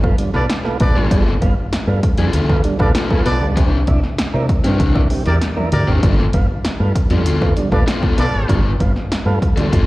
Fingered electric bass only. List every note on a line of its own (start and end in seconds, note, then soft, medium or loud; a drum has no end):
0.00 0.12 G1 loud
0.35 0.47 B1 medium
0.81 0.97 A#1 loud
0.96 1.08 G#1 medium
1.11 1.35 G1 loud
1.42 1.54 G1 medium
1.72 muted fingered electric bass stroke medium
1.87 2.00 G2 loud
2.18 2.31 F2 medium
2.34 2.58 D2 loud
2.80 2.92 A#1 medium
3.26 3.42 B1 loud
3.42 3.57 C#2 medium
3.57 3.82 C2 loud
3.88 4.00 C2 medium
4.19 muted fingered electric bass stroke soft
4.34 4.46 C3 medium
4.65 4.77 G2 medium
4.80 5.04 C2 loud
5.26 5.39 E2 medium
5.72 5.85 D2 loud
5.88 6.00 G#1 medium
6.03 6.28 G1 loud
6.34 6.46 G1 loud
6.65 muted fingered electric bass stroke medium
6.80 6.92 G2 loud
7.10 7.26 F2 medium
7.26 7.51 D2 loud
7.72 7.84 A#1 loud
8.18 8.31 B1 medium
8.34 8.46 G#1 medium
8.49 8.74 G1 loud
8.80 8.93 G1 loud
9.11 muted fingered electric bass stroke soft
9.26 9.38 G2 medium
9.57 9.69 D2 medium
9.73 9.86 G1 medium